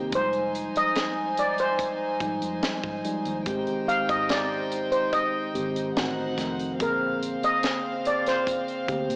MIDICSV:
0, 0, Header, 1, 7, 480
1, 0, Start_track
1, 0, Tempo, 834492
1, 74, Time_signature, 4, 2, 24, 8
1, 5268, End_track
2, 0, Start_track
2, 0, Title_t, "Steel pan"
2, 0, Program_c, 0, 114
2, 88, Note_on_c, 0, 72, 84
2, 417, Note_off_c, 0, 72, 0
2, 444, Note_on_c, 0, 75, 88
2, 800, Note_on_c, 0, 74, 81
2, 808, Note_off_c, 0, 75, 0
2, 920, Note_off_c, 0, 74, 0
2, 920, Note_on_c, 0, 72, 74
2, 1732, Note_off_c, 0, 72, 0
2, 2234, Note_on_c, 0, 77, 88
2, 2287, Note_off_c, 0, 77, 0
2, 2355, Note_on_c, 0, 75, 77
2, 2408, Note_off_c, 0, 75, 0
2, 2474, Note_on_c, 0, 74, 80
2, 2829, Note_on_c, 0, 72, 69
2, 2843, Note_off_c, 0, 74, 0
2, 2949, Note_on_c, 0, 75, 77
2, 2953, Note_off_c, 0, 72, 0
2, 3647, Note_off_c, 0, 75, 0
2, 3922, Note_on_c, 0, 70, 78
2, 4281, Note_on_c, 0, 75, 92
2, 4287, Note_off_c, 0, 70, 0
2, 4641, Note_on_c, 0, 74, 78
2, 4647, Note_off_c, 0, 75, 0
2, 4693, Note_off_c, 0, 74, 0
2, 4761, Note_on_c, 0, 72, 75
2, 5268, Note_off_c, 0, 72, 0
2, 5268, End_track
3, 0, Start_track
3, 0, Title_t, "Violin section"
3, 0, Program_c, 1, 48
3, 74, Note_on_c, 1, 63, 68
3, 75, Note_on_c, 1, 72, 70
3, 76, Note_on_c, 1, 80, 76
3, 1968, Note_off_c, 1, 63, 0
3, 1968, Note_off_c, 1, 72, 0
3, 1969, Note_off_c, 1, 80, 0
3, 1993, Note_on_c, 1, 72, 74
3, 1993, Note_on_c, 1, 79, 74
3, 1995, Note_on_c, 1, 63, 73
3, 3408, Note_off_c, 1, 79, 0
3, 3409, Note_off_c, 1, 72, 0
3, 3410, Note_off_c, 1, 63, 0
3, 3426, Note_on_c, 1, 78, 75
3, 3428, Note_on_c, 1, 63, 70
3, 3429, Note_on_c, 1, 72, 65
3, 3899, Note_off_c, 1, 78, 0
3, 3900, Note_off_c, 1, 63, 0
3, 3900, Note_off_c, 1, 72, 0
3, 3909, Note_on_c, 1, 60, 69
3, 3909, Note_on_c, 1, 77, 75
3, 3910, Note_on_c, 1, 72, 68
3, 5268, Note_off_c, 1, 60, 0
3, 5268, Note_off_c, 1, 72, 0
3, 5268, Note_off_c, 1, 77, 0
3, 5268, End_track
4, 0, Start_track
4, 0, Title_t, "Tine electric piano"
4, 0, Program_c, 2, 4
4, 0, Control_c, 2, 64, 127
4, 0, Note_on_c, 2, 51, 70
4, 0, Note_on_c, 2, 58, 64
4, 0, Note_on_c, 2, 60, 61
4, 0, Note_on_c, 2, 67, 75
4, 64, Note_on_c, 2, 53, 63
4, 68, Note_on_c, 2, 56, 60
4, 71, Note_on_c, 2, 63, 61
4, 74, Note_on_c, 2, 55, 72
4, 82, Control_c, 2, 64, 0
4, 84, Note_off_c, 2, 67, 0
4, 85, Note_off_c, 2, 51, 0
4, 86, Note_off_c, 2, 58, 0
4, 87, Note_off_c, 2, 60, 0
4, 167, Control_c, 2, 64, 127
4, 780, Note_off_c, 2, 53, 0
4, 782, Note_off_c, 2, 56, 0
4, 784, Note_off_c, 2, 63, 0
4, 785, Note_off_c, 2, 55, 0
4, 1267, Note_on_c, 2, 53, 65
4, 1268, Note_on_c, 2, 56, 59
4, 1272, Note_on_c, 2, 63, 58
4, 1275, Note_on_c, 2, 55, 70
4, 1625, Note_off_c, 2, 53, 0
4, 1625, Note_off_c, 2, 56, 0
4, 1628, Note_off_c, 2, 63, 0
4, 1629, Note_off_c, 2, 55, 0
4, 1747, Note_on_c, 2, 53, 67
4, 1751, Note_on_c, 2, 56, 63
4, 1755, Note_on_c, 2, 63, 64
4, 1758, Note_on_c, 2, 55, 79
4, 1927, Note_off_c, 2, 53, 0
4, 1929, Note_off_c, 2, 56, 0
4, 1931, Note_off_c, 2, 63, 0
4, 1932, Note_off_c, 2, 55, 0
4, 1986, Note_on_c, 2, 51, 77
4, 1989, Note_on_c, 2, 56, 71
4, 1992, Note_on_c, 2, 60, 72
4, 1996, Note_on_c, 2, 67, 87
4, 1999, Control_c, 2, 64, 0
4, 2092, Control_c, 2, 64, 127
4, 2701, Note_off_c, 2, 51, 0
4, 2702, Note_off_c, 2, 56, 0
4, 2704, Note_off_c, 2, 60, 0
4, 2706, Note_off_c, 2, 67, 0
4, 3184, Note_on_c, 2, 51, 64
4, 3186, Note_on_c, 2, 56, 56
4, 3188, Note_on_c, 2, 60, 60
4, 3192, Note_on_c, 2, 67, 70
4, 3420, Note_off_c, 2, 51, 0
4, 3425, Note_off_c, 2, 60, 0
4, 3427, Note_on_c, 2, 51, 67
4, 3429, Note_off_c, 2, 56, 0
4, 3429, Note_on_c, 2, 57, 59
4, 3431, Note_off_c, 2, 67, 0
4, 3432, Note_on_c, 2, 60, 60
4, 3435, Note_on_c, 2, 66, 69
4, 3438, Control_c, 2, 64, 0
4, 3528, Control_c, 2, 64, 127
4, 3621, Note_off_c, 2, 51, 0
4, 3622, Note_off_c, 2, 57, 0
4, 3623, Note_off_c, 2, 60, 0
4, 3625, Note_off_c, 2, 66, 0
4, 3666, Note_on_c, 2, 51, 68
4, 3669, Note_on_c, 2, 57, 63
4, 3672, Note_on_c, 2, 60, 64
4, 3674, Note_on_c, 2, 53, 70
4, 3846, Note_off_c, 2, 51, 0
4, 3848, Note_off_c, 2, 57, 0
4, 3850, Note_off_c, 2, 60, 0
4, 3851, Note_off_c, 2, 53, 0
4, 3906, Note_on_c, 2, 49, 54
4, 3906, Note_on_c, 2, 58, 61
4, 3908, Note_on_c, 2, 60, 60
4, 3913, Note_on_c, 2, 68, 69
4, 3919, Control_c, 2, 64, 0
4, 3940, Note_on_c, 2, 50, 66
4, 3946, Note_off_c, 2, 49, 0
4, 4010, Control_c, 2, 64, 127
4, 4622, Note_off_c, 2, 58, 0
4, 4623, Note_off_c, 2, 60, 0
4, 4625, Note_off_c, 2, 68, 0
4, 4639, Note_off_c, 2, 50, 0
4, 5104, Note_on_c, 2, 50, 63
4, 5107, Note_on_c, 2, 58, 58
4, 5111, Note_on_c, 2, 60, 61
4, 5113, Note_on_c, 2, 67, 72
4, 5268, Note_off_c, 2, 50, 0
4, 5268, Note_off_c, 2, 58, 0
4, 5268, Note_off_c, 2, 60, 0
4, 5268, Note_off_c, 2, 67, 0
4, 5268, End_track
5, 0, Start_track
5, 0, Title_t, "Fingered electric bass"
5, 0, Program_c, 3, 33
5, 72, Note_on_c, 3, 29, 96
5, 392, Note_off_c, 3, 29, 0
5, 1267, Note_on_c, 3, 32, 82
5, 1375, Note_off_c, 3, 32, 0
5, 1391, Note_on_c, 3, 41, 81
5, 1498, Note_off_c, 3, 41, 0
5, 1630, Note_on_c, 3, 32, 77
5, 1737, Note_off_c, 3, 32, 0
5, 1872, Note_on_c, 3, 39, 73
5, 1978, Note_off_c, 3, 39, 0
5, 1991, Note_on_c, 3, 32, 90
5, 2097, Note_off_c, 3, 32, 0
5, 2354, Note_on_c, 3, 44, 79
5, 3191, Note_on_c, 3, 32, 76
5, 3200, Note_off_c, 3, 44, 0
5, 3404, Note_off_c, 3, 32, 0
5, 3433, Note_on_c, 3, 33, 81
5, 3645, Note_off_c, 3, 33, 0
5, 3667, Note_on_c, 3, 29, 78
5, 3882, Note_off_c, 3, 29, 0
5, 3913, Note_on_c, 3, 34, 92
5, 4232, Note_off_c, 3, 34, 0
5, 5110, Note_on_c, 3, 38, 78
5, 5218, Note_off_c, 3, 38, 0
5, 5233, Note_on_c, 3, 46, 77
5, 5268, Note_off_c, 3, 46, 0
5, 5268, End_track
6, 0, Start_track
6, 0, Title_t, "Muted fingered electric bass strokes"
6, 434, Note_on_c, 9, 29, 41
6, 492, Note_off_c, 9, 29, 0
6, 1513, Note_on_c, 9, 29, 37
6, 1571, Note_off_c, 9, 29, 0
6, 2230, Note_on_c, 9, 29, 38
6, 2287, Note_off_c, 9, 29, 0
6, 4270, Note_on_c, 9, 29, 39
6, 4327, Note_off_c, 9, 29, 0
6, 5268, End_track
7, 0, Start_track
7, 0, Title_t, "Drums"
7, 71, Note_on_c, 9, 42, 87
7, 72, Note_on_c, 9, 36, 106
7, 128, Note_off_c, 9, 42, 0
7, 130, Note_off_c, 9, 36, 0
7, 190, Note_on_c, 9, 42, 32
7, 247, Note_off_c, 9, 42, 0
7, 317, Note_on_c, 9, 42, 59
7, 374, Note_off_c, 9, 42, 0
7, 436, Note_on_c, 9, 42, 48
7, 494, Note_off_c, 9, 42, 0
7, 550, Note_on_c, 9, 42, 76
7, 555, Note_on_c, 9, 38, 93
7, 608, Note_off_c, 9, 42, 0
7, 612, Note_off_c, 9, 38, 0
7, 791, Note_on_c, 9, 42, 62
7, 848, Note_off_c, 9, 42, 0
7, 910, Note_on_c, 9, 42, 45
7, 967, Note_off_c, 9, 42, 0
7, 1030, Note_on_c, 9, 36, 72
7, 1034, Note_on_c, 9, 42, 67
7, 1087, Note_off_c, 9, 36, 0
7, 1091, Note_off_c, 9, 42, 0
7, 1268, Note_on_c, 9, 36, 85
7, 1268, Note_on_c, 9, 42, 58
7, 1325, Note_off_c, 9, 36, 0
7, 1326, Note_off_c, 9, 42, 0
7, 1392, Note_on_c, 9, 42, 51
7, 1449, Note_off_c, 9, 42, 0
7, 1512, Note_on_c, 9, 42, 76
7, 1513, Note_on_c, 9, 38, 97
7, 1569, Note_off_c, 9, 42, 0
7, 1570, Note_off_c, 9, 38, 0
7, 1631, Note_on_c, 9, 36, 81
7, 1689, Note_off_c, 9, 36, 0
7, 1752, Note_on_c, 9, 42, 58
7, 1810, Note_off_c, 9, 42, 0
7, 1872, Note_on_c, 9, 42, 43
7, 1929, Note_off_c, 9, 42, 0
7, 1990, Note_on_c, 9, 42, 79
7, 1991, Note_on_c, 9, 36, 107
7, 2047, Note_off_c, 9, 42, 0
7, 2048, Note_off_c, 9, 36, 0
7, 2110, Note_on_c, 9, 42, 31
7, 2168, Note_off_c, 9, 42, 0
7, 2237, Note_on_c, 9, 42, 58
7, 2294, Note_off_c, 9, 42, 0
7, 2353, Note_on_c, 9, 36, 70
7, 2354, Note_on_c, 9, 42, 52
7, 2410, Note_off_c, 9, 36, 0
7, 2412, Note_off_c, 9, 42, 0
7, 2469, Note_on_c, 9, 42, 75
7, 2474, Note_on_c, 9, 38, 93
7, 2526, Note_off_c, 9, 42, 0
7, 2531, Note_off_c, 9, 38, 0
7, 2713, Note_on_c, 9, 42, 58
7, 2770, Note_off_c, 9, 42, 0
7, 2830, Note_on_c, 9, 42, 44
7, 2887, Note_off_c, 9, 42, 0
7, 2949, Note_on_c, 9, 36, 71
7, 2955, Note_on_c, 9, 42, 65
7, 3007, Note_off_c, 9, 36, 0
7, 3012, Note_off_c, 9, 42, 0
7, 3193, Note_on_c, 9, 42, 59
7, 3251, Note_off_c, 9, 42, 0
7, 3314, Note_on_c, 9, 42, 50
7, 3371, Note_off_c, 9, 42, 0
7, 3432, Note_on_c, 9, 42, 78
7, 3433, Note_on_c, 9, 38, 105
7, 3490, Note_off_c, 9, 42, 0
7, 3491, Note_off_c, 9, 38, 0
7, 3668, Note_on_c, 9, 36, 67
7, 3672, Note_on_c, 9, 42, 59
7, 3674, Note_on_c, 9, 38, 31
7, 3725, Note_off_c, 9, 36, 0
7, 3729, Note_off_c, 9, 42, 0
7, 3731, Note_off_c, 9, 38, 0
7, 3792, Note_on_c, 9, 42, 42
7, 3850, Note_off_c, 9, 42, 0
7, 3911, Note_on_c, 9, 36, 103
7, 3911, Note_on_c, 9, 42, 84
7, 3968, Note_off_c, 9, 42, 0
7, 3969, Note_off_c, 9, 36, 0
7, 4156, Note_on_c, 9, 42, 60
7, 4213, Note_off_c, 9, 42, 0
7, 4275, Note_on_c, 9, 42, 51
7, 4333, Note_off_c, 9, 42, 0
7, 4389, Note_on_c, 9, 42, 77
7, 4394, Note_on_c, 9, 38, 86
7, 4447, Note_off_c, 9, 42, 0
7, 4451, Note_off_c, 9, 38, 0
7, 4632, Note_on_c, 9, 42, 61
7, 4689, Note_off_c, 9, 42, 0
7, 4753, Note_on_c, 9, 42, 42
7, 4761, Note_on_c, 9, 38, 28
7, 4811, Note_off_c, 9, 42, 0
7, 4818, Note_off_c, 9, 38, 0
7, 4871, Note_on_c, 9, 36, 69
7, 4877, Note_on_c, 9, 42, 65
7, 4929, Note_off_c, 9, 36, 0
7, 4935, Note_off_c, 9, 42, 0
7, 4994, Note_on_c, 9, 42, 30
7, 5051, Note_off_c, 9, 42, 0
7, 5110, Note_on_c, 9, 36, 81
7, 5112, Note_on_c, 9, 42, 55
7, 5167, Note_off_c, 9, 36, 0
7, 5169, Note_off_c, 9, 42, 0
7, 5234, Note_on_c, 9, 42, 52
7, 5268, Note_off_c, 9, 42, 0
7, 5268, End_track
0, 0, End_of_file